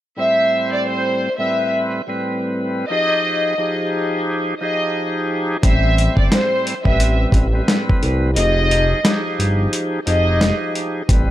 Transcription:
0.16 tonewheel organ A2 G3 C4 C5, violin section E5
0.72 violin section D5
0.88 violin section C5
1.38 tonewheel organ A2 G3 C4 B4, violin section E5
2.07 tonewheel organ A2 G3 C4 B4
2.88 tonewheel organ F3 D#4 G4 G#4, violin section D#5
3.58 tonewheel organ F3 D#4 G4 G#4
4.60 tonewheel organ F3 D#4 G4 G#4, violin section D#5
5.62 analog synth bass A1, tonewheel organ A2 G3 C4 C5, violin section E5, kick, closed hi-hat
5.98 closed hi-hat
6.17 analog synth bass G1, violin section D5, kick
6.32 violin section C5, snare, closed hi-hat
6.67 closed hi-hat
6.84 analog synth bass A1, tonewheel organ A2 G3 C4 B4, violin section E5, kick
7.00 closed hi-hat
7.32 analog synth bass A1, kick, closed hi-hat
7.52 tonewheel organ A2 G3 C4 B4
7.68 snare, closed hi-hat
7.89 kick
8.03 analog synth bass C2, closed hi-hat
8.35 analog synth bass F1, tonewheel organ F3 D#4 G4 G#4, violin section D#5, closed hi-hat
8.71 closed hi-hat
9.03 tonewheel organ F3 D#4 G4 G#4, snare, closed hi-hat
9.39 analog synth bass G1, closed hi-hat
9.73 closed hi-hat
10.06 analog synth bass F1, tonewheel organ F3 D#4 G4 G#4, violin section D#5, closed hi-hat
10.41 snare, closed hi-hat
10.75 closed hi-hat
11.07 analog synth bass A1, tonewheel organ A2 G3 C4 B4, kick, closed hi-hat

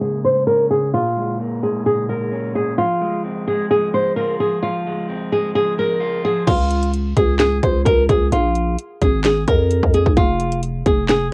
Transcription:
Already playing: clean electric guitar G#3 A#3
0.01 clean electric guitar C#3, nylon-string guitar G#4
0.24 clean electric guitar G#3, nylon-string guitar C5
0.47 clean electric guitar C#4, nylon-string guitar A#4
0.71 clean electric guitar C#3, nylon-string guitar G#4
0.93 clean electric guitar A#2, nylon-string guitar F4
1.17 clean electric guitar G#3
1.40 clean electric guitar A#3
1.63 clean electric guitar G#3, nylon-string guitar G#4
1.86 clean electric guitar A#2, nylon-string guitar G#4
2.09 clean electric guitar G#3, nylon-string guitar A#4
2.32 clean electric guitar C#4
2.55 clean electric guitar A#2, nylon-string guitar G#4
2.78 clean electric guitar F3, nylon-string guitar F4
3.02 clean electric guitar G#3
3.25 clean electric guitar C4
3.48 clean electric guitar G#3, nylon-string guitar G#4
3.71 clean electric guitar F3, nylon-string guitar G#4
3.94 clean electric guitar G#3, nylon-string guitar C5
4.16 clean electric guitar F4, nylon-string guitar A#4
4.40 clean electric guitar F3, nylon-string guitar G#4
4.62 clean electric guitar F3, nylon-string guitar F4
4.87 clean electric guitar G#3
5.09 clean electric guitar C4
5.32 clean electric guitar G#3, nylon-string guitar G#4
5.55 clean electric guitar F3, nylon-string guitar G#4
5.78 clean electric guitar G#3, nylon-string guitar A#4
6.00 clean electric guitar F4
6.25 clean electric guitar F3, nylon-string guitar G#4
6.47 808-style bass C#2, nylon-string guitar F4, kick, closed hi-hat, crash
6.71 closed hi-hat
6.83 closed hi-hat
6.94 closed hi-hat
7.17 808-style bass C#2, nylon-string guitar G#4, kick, closed hi-hat
7.39 nylon-string guitar G#4, snare, clap, closed hi-hat
7.63 808-style bass C#2, nylon-string guitar C5, kick, closed hi-hat
7.85 808-style bass C#2, nylon-string guitar A#4, kick, closed hi-hat
8.09 808-style bass C#2, nylon-string guitar G#4, kick, closed hi-hat
8.32 808-style bass A#1, nylon-string guitar F4, closed hi-hat
8.55 closed hi-hat
8.78 closed hi-hat
9.01 808-style bass G#1, nylon-string guitar G#4, kick, closed hi-hat
9.24 nylon-string guitar G#4, snare, clap, closed hi-hat
9.47 808-style bass F2, nylon-string guitar A#4, kick, closed hi-hat
9.71 closed hi-hat
9.83 808-style bass F2, kick
9.94 nylon-string guitar G#4, closed hi-hat
10.06 808-style bass A#1, kick
10.17 808-style bass F1, nylon-string guitar F4, kick, closed hi-hat
10.40 closed hi-hat
10.52 closed hi-hat
10.63 closed hi-hat
10.86 808-style bass F1, nylon-string guitar G#4, kick, closed hi-hat
11.09 nylon-string guitar G#4, snare, clap, closed hi-hat

